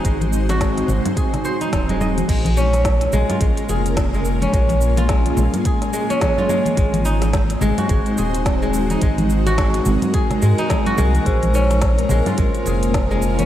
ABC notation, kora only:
X:1
M:4/4
L:1/16
Q:"Swing 16ths" 1/4=107
K:Bbm
V:1 name="Kora"
A, z2 G A, z3 A z c E E A, e z | A,2 D4 A, F A,2 A z2 A, z D | A, z2 F A, z3 A2 A, D A, F A, z | A,2 E4 A, G A,2 A z2 A, z E |
A, z2 G A, z3 A2 A, E A, G A, z | A,2 D4 A, F A,2 A z2 A, z D |]